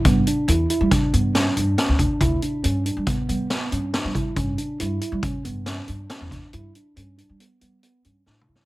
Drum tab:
HH |x--x--x--x--x--x--x--x--x--x--|x--x--x--x--x--x--x--x--x--x--|x--x--x--x--x--x--x--x--x--x--|x--x--x--x--x--x--x--x--------|
SD |------------o-----o-----o-----|------------------o-----o-----|------------------o-----o--o--|------------------------o---o-|
T2 |------------------------------|------------------------------|------------------------------|--------------------------o---|
BD |o-----------o--------------o--|o-----------o--------------o--|o-----------o--------------o--|------------------------------|